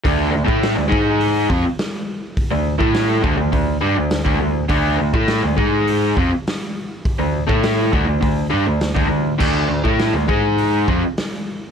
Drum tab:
CC |----------------|----------------|----------------|----------------|
HH |o---o---o---o---|o---o---o---o---|o---o---o---o---|o---o---o---o---|
SD |----o-------o---|----o-------o---|----o-------o---|----o-------o---|
BD |o--o--o---o-----|o--o--o-o----o--|o--o--o---o-----|o--o--o-o----o--|

CC |x---------------|
HH |----o---o---o---|
SD |----o-------o---|
BD |o--o--o---o-----|